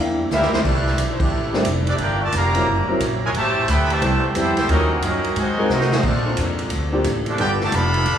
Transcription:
Already playing: E2 G3 A#3 D4 E4
0.00 C3 E3 A#3 F5
0.30 D2 G3 A#3 C4 E4 G4 E5, snare, hi-hat pedal
0.34 A#4
0.42 snare
0.52 E3 G3 A#3 C4 E4 G4 C5, muted upright bass stroke, snare
0.64 C2 D3 G3 A3 C4 D4 E4 G4 D5, kick, crash
0.87 snare
0.98 B1, kick, hi-hat pedal, ride
1.13 C5
1.20 G3 A3 D4 E4 G4 D5, kick, crash
1.31 A1
1.53 G3 C4 D4 E4 A4, snare
1.65 F1, kick, hi-hat pedal, ride
1.87 G3 A3 D4 E4 G4 D5, ride
1.98 G1 G3 A#3 D4 F4 G4 A#4 D5 G5, kick, ride
2.22 A3 F4 A#4 D5 A5
2.32 F1 D3 F3 A#3 D5, kick, hi-hat pedal, ride
2.36 G4 F5 A#5
2.55 F#3 C4 C#4 E4 A#4, ride
2.67 F#1 E3 A#3 C4 F#4, kick
2.88 F#3 C4 C#4 E4 A#4
3.00 A#1, kick, hi-hat pedal, ride
3.24 G#3 E4 A#4 C#5 G#5
3.34 A1 C3 E3 A3 C4 G4 C5 A5, kick, ride
3.38 E5
3.68 D2 C3 E3 B3 A4 E5 B5, kick, hi-hat pedal, ride
3.72 G5
3.90 C3 E3 A3 G4 C5 E5 A5, ride
4.01 C2 G3 B3 C4 E4 A4, kick, ride
4.23 muted upright bass stroke
4.35 F2 G3 B3 C4 E4 G4 A4 C5 G5, kick, hi-hat pedal, ride
4.57 C4 E4 G4 A4 C5 G5, muted upright bass stroke, snare, ride
4.68 D#2 D#3 F#3 A#3 C#4 D#4 F4 F#4 A#4 D#5, kick, ride
5.02 F#2 F#3 A#3 C#4 F#4 A#4 D#5, kick, hi-hat pedal, ride
5.06 D#4
5.24 ride
5.36 G#2 C3 D#3 G#3 F#4 C5 D#5 G#5, kick, ride
5.58 G#3 C4 D#4 F#4 A#4
5.69 C3 F#3 C4 D#4 F#4 A#4 D#5, snare, hi-hat pedal
5.81 snare
5.92 D#3 F#3 A#3 C4 D#4 F#4 C5, snare
6.03 A#2 C3 F3 A3 D4 A4 D5, kick, crash
6.07 C4 F4
6.25 A#3 C4 D4 F4 A4
6.37 F2, kick, hi-hat pedal, ride
6.59 ride
6.70 D2, kick, ride
6.92 A#3 C4 D4 F4 G4
7.04 A1, kick, hi-hat pedal, ride
7.26 F3 A3 C4 D4 F4 A4 D5, ride
7.38 G1 F3 G3 B3 D4 F4 G4 A4 B4 D5 G5, kick, ride
7.60 D3 F3 A3 B4, snare
7.64 F4 D5 A5
7.72 F1 D3 F3 B3 A4 D5 F5 B5, kick, hi-hat pedal, ride
7.94 ride
8.05 A1, kick, ride

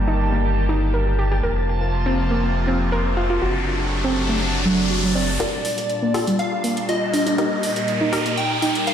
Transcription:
Already playing: G1 D#3 G3 A#3 G4 A5
0.08 D#4
0.32 A#3
0.69 D#4
0.94 A#4
1.19 G4
1.32 G4
1.43 F1 C3 F3 A#3 F4 A#4, riser
2.06 C4
2.31 A#3
2.67 C4
2.92 A#4
3.17 F4
3.30 F4
3.42 F#1 F#3 A3 D4 F#4
4.04 C4
4.29 A3
4.66 F#3
4.90 F#4
5.04 F#3
5.15 C4 D5
5.40 A#2 G3 D4 F4 G4 A#4, closed hi-hat, riser
5.65 open hi-hat
5.78 closed hi-hat
5.90 closed hi-hat
6.03 A#3
6.14 F4 G4 A4, open hi-hat
6.27 G3, closed hi-hat
6.39 F5, closed hi-hat
6.64 A#3, open hi-hat
6.77 closed hi-hat
6.89 F4 D#5, closed hi-hat
7.14 D4 D#5, open hi-hat
7.27 D4, closed hi-hat
7.38 D#4 G4 A#4, closed hi-hat
7.63 open hi-hat
7.76 closed hi-hat
7.88 closed hi-hat
8.01 D#4
8.13 D#4 G4 A#4, open hi-hat
8.26 A#3, closed hi-hat
8.37 G5, closed hi-hat
8.62 D#4, open hi-hat
8.75 closed hi-hat
8.87 A#4 F5, closed hi-hat

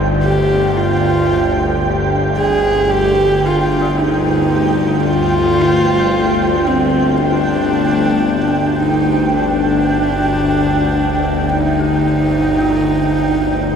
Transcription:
Already playing: G1 D2 G5
0.24 G4
0.77 F4
2.38 G#4
2.90 G4
3.46 F4
3.82 F4
4.00 D#4
5.04 F4
6.67 C4
7.18 D4
8.80 D#4
9.34 D4
11.49 D#4
11.79 G4
12.60 F4

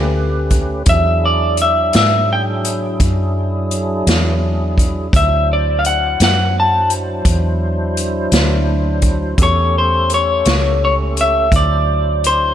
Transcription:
Already playing: D2 A3 C#4 G4 B4
0.50 kick, closed hi-hat
0.85 E2 F#3 D4 E4 G#4 E5, kick, closed hi-hat
1.25 D5
1.57 closed hi-hat
1.62 E5
1.93 G#2 E5, snare, closed hi-hat
2.33 G5
2.65 closed hi-hat
3.00 F#2, kick, closed hi-hat
3.71 closed hi-hat
4.07 E2, snare, closed hi-hat
4.78 kick, closed hi-hat
5.13 D2 F#3 D4 E4 C5 E5, kick, closed hi-hat
5.53 D5
5.79 F5
5.85 F#5, closed hi-hat
6.20 F#2 F#5, snare, closed hi-hat
6.60 A5
6.90 closed hi-hat
7.25 E2, kick, closed hi-hat
7.97 closed hi-hat
8.32 D2, snare, closed hi-hat
9.02 kick, closed hi-hat
9.38 E2 A3 C#4 G4 A4, kick, closed hi-hat
9.43 C#5
9.78 C5
10.10 closed hi-hat
10.14 C#5
10.45 C#2, snare, closed hi-hat
10.85 C#5
11.17 closed hi-hat
11.21 E5
11.52 D2 F#3 D4 E4 C5, kick, closed hi-hat
11.56 D5
12.24 C5, closed hi-hat

